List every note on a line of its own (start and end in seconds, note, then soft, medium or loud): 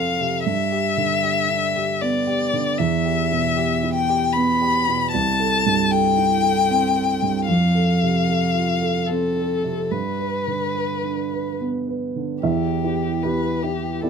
0.00 0.42 F2 soft
0.00 0.20 C3 soft
0.00 0.48 C4 soft
0.00 0.48 F4 soft
0.00 0.48 A4 soft
0.00 0.44 F5 medium
0.20 0.46 C3 soft
0.45 2.75 G2 soft
0.45 2.03 E5 medium
0.72 1.13 G4 soft
0.97 1.38 D3 soft
1.23 1.64 G4 soft
1.49 1.90 D4 soft
1.76 2.17 G4 soft
2.01 2.43 B3 soft
2.01 2.80 D5 medium
2.27 2.68 G4 soft
2.53 2.79 D3 soft
2.78 5.09 E2 soft
2.78 3.93 E5 medium
3.06 3.46 G4 soft
3.31 3.72 B2 soft
3.57 3.98 G4 soft
3.83 4.24 E4 soft
3.94 4.34 G5 medium
4.09 4.50 G4 soft
4.32 4.77 B3 soft
4.32 5.11 B5 medium
4.62 5.03 G4 soft
4.88 5.13 B2 soft
5.11 7.45 C2 soft
5.11 5.93 A5 medium
5.40 5.81 A4 soft
5.66 6.07 G2 soft
5.91 6.33 A4 soft
5.91 7.46 G5 medium
6.17 6.59 E4 soft
6.43 6.85 A4 soft
6.70 7.12 C4 soft
6.96 7.38 A4 soft
7.22 7.48 G2 soft
7.47 9.87 F2 soft
7.47 9.08 F5 medium
7.75 8.17 A4 soft
8.02 8.44 C3 soft
8.28 8.70 A4 soft
8.54 8.97 F4 soft
8.81 9.25 A4 soft
9.06 9.53 C4 soft
9.06 9.93 A4 soft
9.36 9.80 A4 soft
9.64 9.91 C3 soft
9.91 12.40 G2 soft
9.91 11.60 B4 soft
10.19 10.64 B4 soft
10.47 10.92 D3 soft
10.75 11.20 B4 soft
11.03 11.49 D4 soft
11.33 11.77 B4 soft
11.60 12.05 B3 soft
11.88 12.33 B4 soft
12.16 12.43 D3 soft
12.42 12.83 E2 soft
12.42 12.55 E4 medium
12.42 13.24 G4 soft
12.42 13.98 E5 medium
12.63 12.75 G4 soft
12.83 13.20 E4 soft
12.83 13.20 G4 soft
12.83 12.96 B4 soft
13.03 13.16 E4 medium
13.23 13.59 B3 soft
13.23 13.60 E4 soft
13.23 13.36 G4 soft
13.23 13.60 G4 soft
13.23 13.64 B4 soft
13.43 13.55 B4 soft
13.63 13.99 E4 soft
13.63 13.75 E4 soft
13.63 14.03 G4 soft
13.63 13.99 G4 soft
13.83 13.94 G4 soft
14.01 14.10 B3 soft
14.01 14.10 E4 soft
14.01 14.10 G4 soft
14.01 14.10 A4 soft
14.01 14.10 D5 medium
14.01 14.10 E5 soft